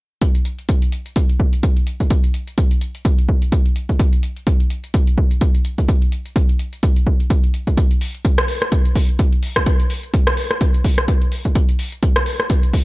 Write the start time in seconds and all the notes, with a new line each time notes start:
0.22 kick, closed hi-hat
0.35 closed hi-hat
0.45 closed hi-hat
0.59 closed hi-hat
0.69 kick, closed hi-hat
0.82 closed hi-hat
0.92 closed hi-hat
1.06 closed hi-hat
1.16 kick, closed hi-hat
1.29 closed hi-hat
1.40 kick
1.53 closed hi-hat
1.63 kick, closed hi-hat
1.77 closed hi-hat
1.87 closed hi-hat
2.00 kick, closed hi-hat
2.10 kick, closed hi-hat
2.24 closed hi-hat
2.34 closed hi-hat
2.47 closed hi-hat
2.58 kick, closed hi-hat
2.71 closed hi-hat
2.81 closed hi-hat
2.95 closed hi-hat
3.05 kick, closed hi-hat
3.18 closed hi-hat
3.29 kick
3.42 closed hi-hat
3.52 kick, closed hi-hat
3.66 closed hi-hat
3.76 closed hi-hat
3.89 kick, closed hi-hat
3.99 kick, closed hi-hat
4.13 closed hi-hat
4.23 closed hi-hat
4.36 closed hi-hat
4.47 kick, closed hi-hat
4.60 closed hi-hat
4.70 closed hi-hat
4.84 closed hi-hat
4.94 kick, closed hi-hat
5.07 closed hi-hat
5.18 kick
5.31 closed hi-hat
5.41 kick, closed hi-hat
5.55 closed hi-hat
5.65 closed hi-hat
5.78 kick, closed hi-hat
5.88 kick, closed hi-hat
6.02 closed hi-hat
6.12 closed hi-hat
6.26 closed hi-hat
6.36 kick, closed hi-hat
6.49 closed hi-hat
6.59 closed hi-hat
6.73 closed hi-hat
6.83 kick, closed hi-hat
6.96 closed hi-hat
7.07 kick
7.20 closed hi-hat
7.30 kick, closed hi-hat
7.44 closed hi-hat
7.54 closed hi-hat
7.67 kick, closed hi-hat
7.77 kick, closed hi-hat
7.91 closed hi-hat
8.01 open hi-hat
8.15 closed hi-hat
8.25 kick, closed hi-hat
8.38 cross-stick, closed hi-hat
8.48 open hi-hat
8.62 cross-stick, closed hi-hat
8.72 kick, closed hi-hat
8.85 closed hi-hat
8.96 kick, open hi-hat
9.09 closed hi-hat
9.19 kick, closed hi-hat
9.32 closed hi-hat
9.43 open hi-hat
9.56 kick, cross-stick, closed hi-hat
9.66 kick, closed hi-hat
9.80 closed hi-hat
9.90 open hi-hat
10.03 closed hi-hat
10.14 kick, closed hi-hat
10.27 cross-stick, closed hi-hat
10.37 open hi-hat
10.51 cross-stick, closed hi-hat
10.61 kick, closed hi-hat
10.74 closed hi-hat
10.85 kick, open hi-hat
10.98 cross-stick, closed hi-hat
11.08 kick, closed hi-hat
11.22 closed hi-hat
11.32 open hi-hat
11.45 kick, closed hi-hat
11.55 kick, closed hi-hat
11.69 closed hi-hat
11.79 open hi-hat
11.92 closed hi-hat
12.03 kick, closed hi-hat
12.16 cross-stick, closed hi-hat
12.26 open hi-hat
12.40 cross-stick, closed hi-hat
12.50 kick, closed hi-hat
12.63 closed hi-hat
12.73 kick, open hi-hat